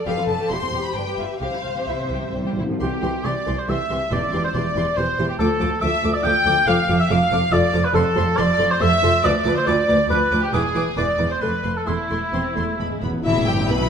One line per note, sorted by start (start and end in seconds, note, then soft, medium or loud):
0.06 0.11 F1 medium
0.06 0.10 F2 medium
0.06 0.11 G4 medium
0.06 0.49 A4 medium
0.06 0.50 B4 medium
0.06 0.27 F5 medium
0.17 0.22 F2 soft
0.17 0.22 F4 soft
0.28 0.33 F1 soft
0.28 0.32 F2 soft
0.28 0.33 D4 soft
0.28 0.50 A5 medium
0.39 0.43 F2 medium
0.39 0.45 G4 medium
0.49 0.55 E1 soft
0.49 0.54 E2 soft
0.49 0.55 E4 soft
0.49 1.41 G4 medium
0.49 0.95 C5 soft
0.49 0.83 C6 medium
0.61 0.65 E2 soft
0.61 0.67 C4 soft
0.72 0.77 E1 medium
0.72 0.76 E2 medium
0.72 0.78 G4 medium
0.83 0.95 B5 medium
0.94 0.99 G1 soft
0.94 0.99 G2 soft
0.94 1.01 D4 soft
0.94 1.42 B4 soft
0.94 1.17 G5 medium
1.06 1.11 G2 medium
1.06 1.12 G4 medium
1.17 1.22 G1 soft
1.17 1.22 G2 soft
1.17 1.23 F4 soft
1.17 1.40 E5 medium
1.39 1.45 C2 medium
1.39 1.48 C3 soft
1.39 1.46 C3 soft
1.39 1.46 G4 soft
1.39 2.57 C5 medium
1.39 2.57 C5 soft
1.39 1.86 F5 medium
1.49 1.56 C3 soft
1.49 1.57 C3 soft
1.53 1.64 C3 soft
1.53 1.58 E4 soft
1.64 1.69 C2 soft
1.64 1.69 C3 soft
1.64 1.72 C3 soft
1.64 1.69 C4 soft
1.73 1.80 C3 soft
1.73 1.81 C3 medium
1.73 1.81 G4 soft
1.81 1.88 C3 soft
1.87 1.92 C2 soft
1.87 2.31 C3 soft
1.87 1.96 C3 soft
1.87 1.93 E4 soft
1.87 2.34 E5 soft
1.97 2.03 C3 soft
1.97 2.05 C4 soft
2.05 2.12 C3 soft
2.10 2.15 C2 medium
2.10 2.20 C3 soft
2.10 2.16 G4 medium
2.21 2.27 C3 medium
2.28 2.35 C3 soft
2.34 2.38 C2 soft
2.34 2.43 C3 medium
2.34 2.69 G3 medium
2.34 2.39 C4 soft
2.45 2.51 C3 medium
2.45 2.51 G4 soft
2.53 2.60 C3 medium
2.58 2.62 C2 soft
2.58 2.68 C3 medium
2.58 2.63 E4 soft
2.69 2.76 C3 medium
2.69 2.80 F3 soft
2.80 2.88 C2 medium
2.80 2.89 C2 medium
2.80 2.89 E3 medium
2.80 3.27 G4 medium
2.80 2.89 G4 medium
2.80 3.22 G4 medium
2.80 2.88 C6 soft
3.02 3.11 C2 medium
3.02 3.11 E3 soft
3.02 3.10 G4 soft
3.02 3.10 C6 soft
3.24 3.33 C2 medium
3.24 3.32 E3 soft
3.24 3.32 G4 medium
3.24 3.57 D5 medium
3.24 3.60 D5 medium
3.24 3.32 C6 medium
3.46 3.55 C2 medium
3.46 3.54 E3 soft
3.46 3.54 G4 soft
3.46 3.55 C6 soft
3.57 3.68 C5 soft
3.57 3.71 C5 medium
3.68 3.76 C2 medium
3.68 3.76 E3 medium
3.68 3.76 G4 medium
3.68 4.11 E5 medium
3.68 4.12 E5 medium
3.68 3.76 C6 soft
3.90 3.98 C2 medium
3.90 3.98 E3 soft
3.90 3.98 G4 soft
3.90 3.98 C6 soft
4.11 4.19 E1 medium
4.11 4.20 E2 medium
4.11 4.72 E2 medium
4.11 4.19 E3 medium
4.11 4.19 G4 medium
4.11 4.44 D5 medium
4.11 4.43 D5 medium
4.11 4.19 C6 medium
4.33 4.41 E1 medium
4.33 4.41 E2 medium
4.33 4.42 E3 soft
4.33 4.42 G4 soft
4.33 4.41 C6 soft
4.44 4.55 C5 medium
4.44 4.49 C5 medium
4.54 4.63 E1 medium
4.54 4.63 E2 medium
4.54 4.63 E3 medium
4.54 4.63 G4 soft
4.54 4.97 D5 medium
4.54 4.99 D5 medium
4.54 4.63 C6 medium
4.76 4.84 E1 medium
4.76 4.84 E2 medium
4.76 4.84 E3 soft
4.76 4.84 G4 soft
4.76 4.85 C6 soft
4.96 5.05 E1 medium
4.96 5.05 E2 medium
4.96 5.05 E3 medium
4.96 5.05 G4 medium
4.96 5.28 C5 medium
4.96 5.29 C5 medium
4.96 5.06 C6 soft
5.18 5.26 E1 medium
5.18 5.26 E2 medium
5.18 5.27 E3 medium
5.18 5.26 G4 medium
5.18 5.28 C6 soft
5.29 5.39 G4 medium
5.29 5.38 G4 medium
5.39 5.47 D2 medium
5.39 5.48 D2 medium
5.39 5.48 F3 medium
5.39 5.80 A4 medium
5.39 5.47 A4 medium
5.39 5.48 D6 medium
5.60 5.69 D2 medium
5.60 5.69 F3 medium
5.60 5.69 A4 medium
5.60 5.68 D6 medium
5.81 5.90 D2 medium
5.81 5.90 F3 medium
5.81 5.90 A4 medium
5.81 6.15 E5 loud
5.81 6.13 E5 medium
5.81 5.90 D6 medium
6.03 6.11 D2 medium
6.03 6.11 F3 medium
6.03 6.11 A4 medium
6.03 6.11 D6 medium
6.13 6.24 D5 medium
6.13 6.25 D5 medium
6.24 6.32 D2 medium
6.24 6.33 D2 medium
6.24 6.32 F3 medium
6.24 6.33 A4 medium
6.24 6.69 G5 loud
6.24 6.67 G5 medium
6.24 6.32 D6 medium
6.46 6.54 D2 medium
6.46 6.54 F3 medium
6.46 6.54 A4 medium
6.46 6.54 D6 medium
6.67 6.75 F1 medium
6.67 6.75 F2 medium
6.67 6.76 F3 medium
6.67 6.75 A4 medium
6.67 6.99 F5 loud
6.67 6.99 F5 medium
6.67 6.76 D6 medium
6.89 6.97 F1 medium
6.89 6.97 F2 medium
6.89 6.97 F3 medium
6.89 6.97 A4 medium
6.89 6.97 D6 medium
6.99 7.09 E5 medium
6.99 7.05 E5 loud
7.10 7.18 F1 medium
7.10 7.18 F2 medium
7.10 7.18 F3 medium
7.10 7.18 A4 medium
7.10 7.52 F5 medium
7.10 7.54 F5 loud
7.10 7.18 D6 medium
7.31 7.39 F1 medium
7.31 7.40 F2 medium
7.31 7.39 F3 medium
7.31 7.40 A4 medium
7.31 7.40 D6 medium
7.52 7.60 F1 medium
7.52 7.61 F2 medium
7.52 7.61 F3 medium
7.52 7.61 A4 medium
7.52 7.86 D5 loud
7.52 7.84 D5 medium
7.52 7.61 D6 medium
7.73 7.82 F1 medium
7.73 7.81 F2 medium
7.73 7.81 F3 medium
7.73 7.81 A4 medium
7.73 7.82 D6 medium
7.85 7.94 B4 medium
7.85 7.95 B4 medium
7.94 8.03 F1 medium
7.94 8.03 F2 medium
7.94 8.02 F3 medium
7.94 8.02 A4 medium
7.94 8.39 A4 loud
7.94 8.37 A4 medium
7.94 8.03 C6 medium
8.16 8.24 F1 medium
8.16 8.25 F2 medium
8.16 8.24 F3 medium
8.16 8.24 A4 medium
8.16 8.25 C6 medium
8.37 8.46 F1 medium
8.37 8.46 F2 medium
8.37 8.45 F3 medium
8.37 8.46 A4 medium
8.37 8.73 D5 loud
8.37 8.70 D5 medium
8.37 8.46 C6 medium
8.59 8.68 F1 medium
8.59 8.68 F2 medium
8.59 8.67 F3 medium
8.59 8.67 A4 medium
8.59 8.68 C6 medium
8.70 8.81 C5 medium
8.70 8.82 C5 medium
8.80 8.89 F1 medium
8.80 8.89 F2 medium
8.80 8.88 F3 medium
8.80 8.88 A4 medium
8.80 9.26 E5 loud
8.80 9.24 E5 loud
8.80 8.90 C6 medium
9.02 9.11 F1 medium
9.02 9.11 F2 medium
9.02 9.10 F3 medium
9.02 9.11 A4 medium
9.02 9.11 C6 medium
9.23 9.32 D2 medium
9.23 9.31 F3 medium
9.23 9.31 B4 medium
9.23 9.56 D5 medium
9.23 9.57 D5 loud
9.23 9.32 D6 medium
9.45 9.53 D2 medium
9.45 9.54 D2 medium
9.45 9.53 F3 medium
9.45 9.54 B4 medium
9.45 9.53 D6 medium
9.56 9.67 C5 medium
9.56 9.66 C5 medium
9.67 9.75 D2 medium
9.67 9.75 F3 medium
9.67 9.75 B4 medium
9.67 10.09 D5 loud
9.67 10.10 D5 medium
9.67 9.76 D6 medium
9.88 9.97 D2 medium
9.88 9.96 F3 medium
9.88 9.96 B4 medium
9.88 9.97 D6 medium
10.10 10.18 D2 medium
10.10 10.19 D2 medium
10.10 10.18 F3 medium
10.10 10.18 B4 medium
10.10 10.42 B4 medium
10.10 10.19 D6 medium
10.32 10.40 D2 medium
10.32 10.40 F3 medium
10.32 10.40 B4 medium
10.32 10.40 D6 medium
10.43 10.54 G4 medium
10.43 10.48 G4 medium
10.53 10.62 E1 medium
10.53 10.62 E2 medium
10.53 10.62 E3 medium
10.53 10.85 G#4 medium
10.53 10.97 G#4 medium
10.53 10.62 B4 medium
10.53 10.61 D6 medium
10.75 10.83 E1 medium
10.75 10.83 E2 medium
10.75 10.83 E3 medium
10.75 10.83 B4 medium
10.75 10.83 D6 medium
10.97 11.06 E1 medium
10.97 11.05 E2 medium
10.97 11.05 E3 medium
10.97 11.05 B4 medium
10.97 11.30 D5 medium
10.97 11.06 D6 medium
11.18 11.27 E1 medium
11.18 11.26 E2 medium
11.18 11.27 E3 soft
11.18 11.27 B4 soft
11.18 11.26 D6 soft
11.30 11.41 C5 medium
11.30 11.43 C5 medium
11.41 11.49 F1 medium
11.41 11.49 F2 medium
11.41 11.49 A3 medium
11.41 11.49 A4 medium
11.41 11.78 B4 medium
11.41 11.75 B4 medium
11.41 11.49 C6 soft
11.63 11.72 F1 medium
11.63 11.72 F2 soft
11.63 11.71 A3 soft
11.63 11.71 A4 soft
11.63 11.72 C6 soft
11.76 11.87 A4 medium
11.76 11.89 A4 medium
11.86 11.95 E1 medium
11.86 11.95 E2 medium
11.86 11.94 A3 soft
11.86 13.03 E4 medium
11.86 13.01 E4 medium
11.86 11.95 A4 soft
11.86 11.95 C6 medium
12.10 12.19 E1 medium
12.10 12.18 E2 soft
12.10 12.18 A3 soft
12.10 12.18 A4 soft
12.10 12.18 C6 soft
12.33 12.42 E1 medium
12.33 12.41 E2 medium
12.33 12.55 C4 medium
12.33 12.41 C6 soft
12.56 12.65 E1 soft
12.56 12.64 E2 medium
12.56 12.80 A3 medium
12.56 12.65 C6 soft
12.79 12.88 E1 medium
12.79 12.87 E2 soft
12.79 13.02 G#3 medium
12.79 12.88 B5 soft
12.88 12.94 E2 soft
12.95 13.02 E2 soft
13.02 13.10 E1 medium
13.02 13.10 E2 soft
13.02 13.10 E2 medium
13.02 13.25 B3 medium
13.02 13.10 B5 soft
13.11 13.18 E2 medium
13.25 13.46 E1 medium
13.25 13.46 E2 medium
13.25 13.88 A2 medium
13.25 13.46 E4 medium
13.25 13.89 E4 medium
13.25 13.46 E5 medium
13.47 13.70 G1 medium
13.47 13.70 G2 medium
13.47 13.70 G4 medium
13.47 13.70 G5 medium
13.68 13.89 B1 medium
13.68 13.89 B2 medium
13.68 13.89 B4 medium
13.68 13.89 B5 medium